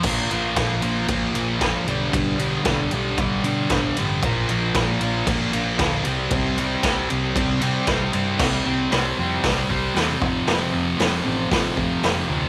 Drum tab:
CC |x-------|--------|--------|--------|
RD |-xxxxxxx|xxxxxxxx|xxxxxxxx|xxxxxxxx|
HH |--------|--------|--------|--------|
SD |--o---o-|--o---o-|--o---o-|--o---o-|
BD |o-o-o-o-|o-o-o-o-|o-o-o-o-|o-o-o-o-|

CC |x-------|--------|
RD |--------|--------|
HH |--o-o-o-|o-o-o-o-|
SD |o-o-o-o-|o-o-o-o-|
BD |o---oo-o|----oo--|